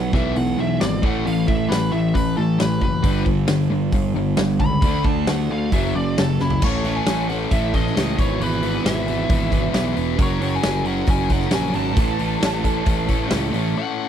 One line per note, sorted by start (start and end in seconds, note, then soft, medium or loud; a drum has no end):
0.00 0.11 B1 medium
0.00 0.11 B2 medium
0.00 0.12 B2 medium
0.00 0.12 F#3 medium
0.00 0.13 B3 loud
0.00 0.14 F#5 medium
0.11 0.34 B1 medium
0.11 1.00 E2 medium
0.11 1.01 B2 medium
0.11 0.34 B2 medium
0.11 0.35 E3 loud
0.11 0.35 B3 loud
0.11 kick loud
0.11 snare soft
0.15 1.02 E3 medium
0.15 0.36 E5 medium
0.36 0.56 B1 medium
0.36 0.56 B2 medium
0.36 0.57 E3 medium
0.36 0.58 F#5 medium
0.36 open hi-hat medium
0.58 0.78 B1 medium
0.58 0.78 B2 medium
0.58 0.79 E3 medium
0.58 0.81 E5 medium
0.81 1.01 G#1 medium
0.81 1.01 B2 medium
0.81 1.01 E3 medium
0.81 1.03 D5 medium
0.81 snare loud
0.81 open hi-hat medium
1.02 1.24 A1 medium
1.02 2.80 A2 medium
1.02 1.24 A2 medium
1.02 1.24 E3 medium
1.02 2.81 E3 medium
1.02 1.25 A3 loud
1.02 2.82 A3 medium
1.02 1.26 F#5 medium
1.02 kick loud
1.26 1.46 A1 medium
1.26 1.46 A2 medium
1.26 1.46 E3 medium
1.26 1.48 F5 medium
1.26 open hi-hat medium
1.48 1.69 A1 medium
1.48 1.68 A2 medium
1.48 1.68 E3 medium
1.48 1.70 E5 medium
1.48 kick medium
1.69 1.91 A1 medium
1.69 1.90 A2 medium
1.69 1.90 E3 medium
1.69 1.91 B4 medium
1.69 snare loud
1.69 open hi-hat medium
1.92 2.13 A1 medium
1.92 2.12 A2 medium
1.92 2.12 E3 medium
1.92 2.14 E5 medium
2.14 2.35 A1 medium
2.14 2.35 A2 medium
2.14 2.35 E3 medium
2.14 2.36 B4 medium
2.14 kick medium
2.14 open hi-hat medium
2.37 2.58 A1 medium
2.37 2.57 A2 medium
2.37 2.57 E3 medium
2.37 2.59 A4 medium
2.58 2.80 A1 medium
2.58 2.79 A2 medium
2.58 2.79 E3 medium
2.58 2.82 B4 medium
2.58 snare loud
2.58 open hi-hat medium
2.81 3.02 F#1 medium
2.81 3.02 A2 medium
2.81 3.02 E3 medium
2.81 3.26 B4 loud
2.81 kick medium
3.03 3.45 G1 medium
3.03 3.24 G2 medium
3.03 4.81 G2 medium
3.03 3.24 D3 medium
3.03 4.80 D3 medium
3.03 3.25 G3 medium
3.03 kick loud
3.03 open hi-hat medium
3.07 4.82 G3 loud
3.25 3.46 G2 medium
3.25 3.46 D3 medium
3.25 kick medium
3.47 3.69 G1 medium
3.47 3.68 G2 medium
3.47 3.68 D3 medium
3.47 snare loud
3.47 open hi-hat medium
3.70 3.91 G1 medium
3.70 3.91 G2 medium
3.70 3.91 D3 medium
3.92 4.13 G1 medium
3.92 4.14 G2 medium
3.92 4.14 D3 medium
3.92 kick medium
3.92 open hi-hat medium
4.15 4.35 G1 medium
4.15 4.36 G2 medium
4.15 4.36 D3 medium
4.37 4.58 G1 medium
4.37 4.58 G2 medium
4.37 4.58 D3 medium
4.37 snare loud
4.37 open hi-hat medium
4.60 4.81 C#2 medium
4.60 4.81 G2 medium
4.60 4.81 D3 medium
4.60 5.04 B5 medium
4.60 kick medium
4.81 5.03 D2 medium
4.81 5.70 D3 medium
4.81 5.04 D3 loud
4.81 5.71 A3 loud
4.81 5.05 A3 medium
4.81 5.05 D4 loud
4.81 kick loud
4.81 open hi-hat medium
4.85 5.72 D4 loud
5.05 5.25 D2 medium
5.05 5.25 D3 medium
5.05 5.26 A3 medium
5.05 5.27 A5 medium
5.05 kick medium
5.27 5.48 D2 medium
5.27 5.48 D3 medium
5.27 5.48 A3 medium
5.27 5.51 F#5 medium
5.27 snare loud
5.27 open hi-hat medium
5.50 5.70 D2 medium
5.50 5.71 D3 medium
5.50 5.70 A3 medium
5.50 5.73 F5 medium
5.70 5.93 F#1 medium
5.70 6.60 F#2 medium
5.70 5.94 F#2 medium
5.70 6.60 C#3 medium
5.70 5.94 C#3 loud
5.70 5.94 F#3 loud
5.70 6.61 F#3 medium
5.70 5.95 E5 medium
5.70 kick medium
5.70 open hi-hat medium
5.95 6.15 F#1 medium
5.95 6.15 F#2 medium
5.95 6.15 C#3 medium
5.95 6.17 D5 medium
6.18 6.38 F#1 medium
6.18 6.38 F#2 medium
6.18 6.38 C#3 medium
6.18 6.40 A4 medium
6.18 snare loud
6.18 open hi-hat medium
6.40 6.61 F#1 medium
6.40 6.60 F#2 medium
6.40 6.60 C#3 medium
6.40 6.62 E4 medium
6.40 snare medium
6.50 floor tom medium
6.60 7.00 A1 medium
6.60 6.82 A2 medium
6.60 6.84 A2 medium
6.60 6.85 E3 medium
6.60 6.84 A3 medium
6.60 6.97 C#5 medium
6.60 kick loud
6.60 crash loud
6.65 6.85 A3 medium
6.65 6.86 C#4 medium
6.65 6.87 E4 medium
6.65 6.87 A4 medium
6.83 7.06 A2 medium
6.83 7.08 A2 medium
6.83 7.08 E3 medium
6.83 7.07 A3 medium
6.83 7.08 A3 medium
6.83 7.09 C#4 medium
6.83 7.10 E4 medium
6.83 open hi-hat medium
6.88 7.10 A4 medium
6.96 7.29 G#5 loud
7.06 7.45 A1 medium
7.06 7.27 A2 medium
7.06 7.29 A2 medium
7.06 7.29 E3 medium
7.06 7.29 A3 medium
7.06 7.30 A3 medium
7.06 7.30 C#4 medium
7.06 snare loud
7.06 open hi-hat medium
7.10 7.32 E4 medium
7.10 7.31 A4 medium
7.28 7.50 A2 medium
7.28 7.51 A2 medium
7.28 7.51 E3 medium
7.28 7.51 A3 loud
7.28 7.52 A3 loud
7.28 7.52 C#4 medium
7.28 7.53 E4 loud
7.28 7.53 A4 loud
7.28 7.35 F#5 medium
7.28 open hi-hat soft
7.51 7.89 A1 medium
7.51 7.73 A2 medium
7.51 7.72 A2 medium
7.51 7.74 E3 medium
7.51 7.74 A3 medium
7.51 7.73 A3 medium
7.51 7.74 C#4 medium
7.51 7.74 E4 medium
7.51 7.74 A4 medium
7.51 7.74 E5 medium
7.51 kick loud
7.51 open hi-hat medium
7.74 7.96 A2 medium
7.74 7.95 A2 medium
7.74 7.96 E3 medium
7.74 7.96 A3 medium
7.74 7.97 C#4 medium
7.74 7.97 E4 medium
7.74 7.98 A4 medium
7.74 8.20 D#5 medium
7.74 kick medium
7.74 open hi-hat soft
7.87 snare soft
7.96 8.16 C#2 medium
7.96 8.17 A2 medium
7.96 8.18 E3 medium
7.96 8.18 A3 medium
7.96 8.18 C#4 loud
7.96 8.18 E4 loud
7.96 8.18 A4 medium
7.96 snare loud
7.96 open hi-hat medium
8.19 8.38 G#1 medium
8.19 8.40 E2 medium
8.19 8.41 B2 medium
8.19 8.42 E3 medium
8.19 8.39 G#3 loud
8.19 8.40 B3 medium
8.19 8.41 E4 loud
8.19 8.41 B4 loud
8.19 8.42 C#5 medium
8.19 kick loud
8.19 open hi-hat medium
8.40 8.78 G#1 loud
8.40 8.62 E2 medium
8.40 8.62 B2 medium
8.40 8.63 E3 medium
8.40 8.63 G#3 medium
8.40 8.63 B3 medium
8.40 8.64 E4 loud
8.40 8.64 B4 medium
8.40 8.88 B4 medium
8.40 open hi-hat medium
8.63 8.83 E2 medium
8.63 8.85 B2 medium
8.63 8.85 E3 loud
8.63 8.84 G#3 medium
8.63 8.85 B3 medium
8.63 8.85 E4 medium
8.63 8.86 B4 medium
8.63 open hi-hat medium
8.84 9.23 G#1 medium
8.84 9.06 E2 medium
8.84 9.07 B2 medium
8.84 9.07 E3 medium
8.84 9.05 G#3 medium
8.84 9.06 B3 medium
8.84 9.07 E4 medium
8.84 9.07 B4 medium
8.84 9.93 E5 medium
8.84 snare loud
8.84 open hi-hat medium
9.06 9.28 E2 medium
9.06 9.29 B2 medium
9.06 9.30 E3 loud
9.06 9.28 G#3 loud
9.06 9.28 B3 medium
9.06 9.29 E4 loud
9.06 9.30 B4 loud
9.06 open hi-hat medium
9.29 9.68 G#1 medium
9.29 9.50 E2 medium
9.29 9.51 B2 medium
9.29 9.52 E3 medium
9.29 9.50 G#3 medium
9.29 9.50 B3 medium
9.29 9.51 E4 medium
9.29 9.52 B4 medium
9.29 kick loud
9.29 open hi-hat medium
9.51 9.72 E2 medium
9.51 9.72 B2 medium
9.51 9.73 E3 medium
9.51 9.72 G#3 medium
9.51 9.73 B3 medium
9.51 9.74 E4 medium
9.51 9.74 B4 medium
9.51 kick medium
9.51 open hi-hat medium
9.73 9.94 B1 medium
9.73 9.93 E2 medium
9.73 9.94 B2 loud
9.73 9.95 E3 loud
9.73 9.95 G#3 medium
9.73 9.95 B3 loud
9.73 9.95 E4 loud
9.73 9.96 B4 loud
9.73 snare loud
9.73 open hi-hat medium
9.94 10.16 E1 medium
9.94 10.16 E2 medium
9.94 10.17 B2 medium
9.94 10.18 E3 medium
9.94 10.18 G#3 medium
9.94 10.18 B3 medium
9.94 10.18 E4 medium
9.94 10.18 B4 loud
9.94 open hi-hat medium
10.17 10.57 F#1 medium
10.17 10.38 F#2 medium
10.17 10.39 C#3 medium
10.17 10.41 F#3 medium
10.17 10.40 F#3 loud
10.17 10.42 C#4 loud
10.17 10.42 F#4 loud
10.17 10.42 A#4 loud
10.17 kick loud
10.17 open hi-hat medium
10.22 10.56 C#5 medium
10.40 10.61 F#2 medium
10.40 10.61 C#3 medium
10.40 10.62 F#3 medium
10.40 10.64 C#4 medium
10.40 10.64 F#4 loud
10.40 10.64 A#4 medium
10.40 open hi-hat medium
10.55 10.86 G#5 medium
10.62 11.02 F#1 medium
10.62 10.82 F#2 medium
10.62 10.83 C#3 medium
10.62 10.86 F#3 medium
10.62 10.84 F#3 medium
10.62 10.87 C#4 medium
10.62 10.87 F#4 medium
10.62 10.87 A#4 medium
10.62 snare loud
10.62 open hi-hat medium
10.83 11.05 F#2 medium
10.83 11.06 C#3 loud
10.83 11.07 F#3 loud
10.83 11.07 F#3 medium
10.83 11.09 C#4 loud
10.83 11.10 F#5 medium
10.83 open hi-hat medium
10.88 11.09 F#4 loud
10.88 11.10 A#4 loud
11.06 11.46 F#1 medium
11.06 11.28 F#2 medium
11.06 11.29 C#3 medium
11.06 11.30 F#3 medium
11.06 11.29 F#3 medium
11.06 11.31 C#4 medium
11.06 kick loud
11.06 open hi-hat medium
11.10 11.31 F#4 medium
11.10 11.31 A#4 medium
11.10 11.33 G#5 loud
11.29 11.50 F#2 medium
11.29 11.51 C#3 loud
11.29 11.52 F#3 medium
11.29 11.51 F#3 medium
11.29 11.53 C#4 medium
11.29 11.53 F#4 medium
11.29 11.54 A#4 medium
11.29 11.54 F#5 medium
11.29 kick medium
11.29 open hi-hat medium
11.41 snare soft
11.51 11.72 A#1 medium
11.51 11.73 F#2 loud
11.51 11.73 C#3 medium
11.51 11.74 F#3 loud
11.51 11.76 C#4 loud
11.51 11.76 F#4 loud
11.51 11.75 G#5 loud
11.51 snare loud
11.51 open hi-hat medium
11.55 11.76 A#4 loud
11.74 11.94 G#1 medium
11.74 11.96 F#2 medium
11.74 11.93 C#3 medium
11.74 11.95 F#3 medium
11.74 11.97 F#3 medium
11.74 11.99 C#4 medium
11.74 11.98 F#4 medium
11.74 11.98 A#4 medium
11.74 13.28 A5 medium
11.74 open hi-hat medium
11.94 12.36 A1 loud
11.94 12.17 A2 medium
11.94 12.18 E3 medium
11.94 12.19 A3 loud
11.94 kick loud
11.94 open hi-hat medium
11.98 12.18 A2 medium
11.98 12.19 A3 medium
11.98 12.19 C#4 loud
11.98 12.20 E4 loud
11.98 12.20 A4 loud
12.18 12.39 A2 medium
12.18 12.39 E3 medium
12.18 12.40 A3 medium
12.18 12.40 A3 loud
12.18 12.40 C#4 medium
12.18 12.41 E4 medium
12.18 12.41 A4 loud
12.18 open hi-hat medium
12.40 12.81 A1 medium
12.40 12.59 A2 medium
12.40 12.62 A2 medium
12.40 12.59 E3 medium
12.40 12.61 A3 medium
12.40 12.63 A3 medium
12.40 12.63 C#4 medium
12.40 12.63 E4 medium
12.40 12.64 A4 medium
12.40 snare loud
12.40 open hi-hat medium
12.60 12.83 A2 medium
12.60 12.84 A2 medium
12.60 12.84 E3 loud
12.60 12.85 A3 loud
12.64 12.85 A3 loud
12.64 12.86 C#4 loud
12.64 12.86 E4 loud
12.64 12.87 A4 loud
12.64 kick medium
12.64 open hi-hat medium
12.84 13.25 A1 medium
12.84 13.06 A2 medium
12.84 13.06 E3 medium
12.84 13.07 A3 medium
12.84 13.07 C#4 medium
12.84 13.08 E4 loud
12.84 13.09 A4 medium
12.84 kick loud
12.84 open hi-hat medium
13.07 13.27 A2 medium
13.07 13.29 A2 medium
13.07 13.27 E3 loud
13.07 13.28 A3 loud
13.07 13.30 A3 medium
13.07 13.31 C#4 medium
13.07 13.31 E4 medium
13.07 13.31 A4 loud
13.07 kick medium
13.07 open hi-hat medium
13.28 13.49 A2 loud
13.28 13.53 A2 loud
13.28 13.50 E3 medium
13.28 13.51 A3 loud
13.28 13.53 A3 loud
13.28 snare loud
13.28 open hi-hat medium
13.32 13.51 C#2 medium
13.32 13.54 C#4 loud
13.32 13.54 E4 medium
13.32 13.55 A4 loud
13.51 13.73 A1 medium
13.51 13.74 A2 medium
13.51 13.74 E3 medium
13.51 13.74 A3 medium
13.51 13.75 A3 medium
13.51 open hi-hat medium
13.55 13.76 C#4 medium
13.55 13.76 E4 medium
13.55 13.77 A4 loud
13.75 14.09 A2 medium
13.75 14.09 A3 medium
13.75 14.09 C#4 medium
13.75 14.09 E4 medium
13.75 14.09 A4 loud
13.75 14.09 F#5 loud